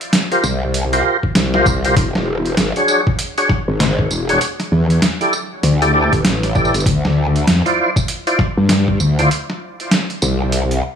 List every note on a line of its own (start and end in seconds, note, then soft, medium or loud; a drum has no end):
0.01 closed hi-hat soft
0.13 snare loud
0.13 closed hi-hat medium
0.32 0.44 F4 medium
0.32 0.44 G4 medium
0.32 0.44 A#4 medium
0.32 0.44 C5 medium
0.32 closed hi-hat soft
0.44 1.03 C2 loud
0.44 tambourine medium
0.74 closed hi-hat medium
0.93 1.17 F4 medium
0.93 1.17 G4 medium
0.93 1.17 A#4 medium
0.93 1.17 C5 medium
0.93 closed hi-hat medium
1.23 kick medium
1.35 1.64 C2 loud
1.35 snare loud
1.35 closed hi-hat medium
1.54 1.67 F4 loud
1.54 1.67 G4 medium
1.54 1.67 A#4 medium
1.54 1.67 C5 loud
1.54 snare medium
1.66 1.94 C2 loud
1.66 kick loud
1.66 tambourine medium
1.85 1.95 F4 medium
1.85 1.95 G4 medium
1.85 1.95 A#4 medium
1.85 1.95 C5 loud
1.85 closed hi-hat medium
1.97 2.56 E1 loud
1.97 kick loud
1.97 closed hi-hat medium
2.15 snare soft
2.15 snare medium
2.46 closed hi-hat soft
2.57 2.73 G#1 loud
2.57 snare loud
2.57 closed hi-hat medium
2.76 3.01 D4 medium
2.76 3.01 F#4 medium
2.76 3.01 G#4 medium
2.76 3.01 C#5 loud
2.76 closed hi-hat soft
2.88 tambourine medium
3.07 kick loud
3.19 closed hi-hat medium
3.38 3.51 D4 medium
3.38 3.50 F#4 medium
3.38 3.50 G#4 medium
3.38 3.50 C#5 medium
3.38 closed hi-hat medium
3.49 kick loud
3.49 snare medium
3.68 4.09 G#1 loud
3.80 snare loud
3.80 closed hi-hat medium
3.99 kick medium
4.11 4.39 E1 loud
4.11 tambourine medium
4.29 4.40 D4 loud
4.29 4.40 F#4 medium
4.29 4.40 G#4 medium
4.29 4.40 C#5 loud
4.29 closed hi-hat medium
4.41 closed hi-hat medium
4.60 snare medium
4.60 closed hi-hat soft
4.72 5.00 E2 loud
4.90 closed hi-hat soft
5.02 snare loud
5.02 closed hi-hat medium
5.21 5.34 E4 medium
5.21 5.34 G4 medium
5.21 5.34 A4 medium
5.21 5.34 D5 medium
5.21 closed hi-hat soft
5.33 tambourine medium
5.63 6.10 D2 loud
5.63 closed hi-hat medium
5.82 5.92 E4 medium
5.82 5.92 G4 medium
5.82 5.92 A4 medium
5.82 5.92 D5 medium
5.82 closed hi-hat medium
5.94 6.13 E4 medium
5.94 6.13 G4 medium
5.94 6.13 A4 medium
5.94 6.13 D5 medium
6.13 6.23 G1 loud
6.13 kick medium
6.13 closed hi-hat soft
6.24 6.71 A1 loud
6.24 snare loud
6.24 closed hi-hat medium
6.43 snare medium
6.43 closed hi-hat soft
6.55 6.75 E4 loud
6.55 6.75 G4 medium
6.55 6.75 A4 medium
6.55 6.75 D5 loud
6.55 kick loud
6.55 tambourine soft
6.65 tambourine soft
6.74 6.84 G1 loud
6.74 closed hi-hat medium
6.74 tambourine soft
6.80 tambourine medium
6.86 7.45 D2 loud
6.86 kick loud
6.86 closed hi-hat medium
7.05 snare soft
7.05 snare medium
7.36 closed hi-hat soft
7.47 7.63 F2 loud
7.47 snare loud
7.47 closed hi-hat medium
7.65 7.90 E4 medium
7.65 7.90 F4 medium
7.65 7.90 C5 medium
7.65 7.90 D5 loud
7.65 closed hi-hat soft
7.96 kick loud
7.96 tambourine medium
8.08 closed hi-hat medium
8.27 8.40 E4 medium
8.27 8.40 F4 medium
8.27 8.40 C5 medium
8.27 8.40 D5 medium
8.27 closed hi-hat medium
8.39 kick loud
8.39 snare medium
8.57 8.98 G2 loud
8.69 snare loud
8.69 closed hi-hat medium
8.88 kick medium
9.00 9.29 D2 loud
9.00 tambourine medium
9.19 9.29 E4 loud
9.19 9.29 F4 medium
9.19 9.30 C5 medium
9.19 9.29 D5 loud
9.19 closed hi-hat medium
9.31 closed hi-hat medium
9.50 snare medium
9.80 closed hi-hat soft
9.91 snare loud
9.91 closed hi-hat medium
10.10 closed hi-hat soft
10.22 10.82 C2 loud
10.22 tambourine medium
10.52 closed hi-hat medium
10.71 closed hi-hat medium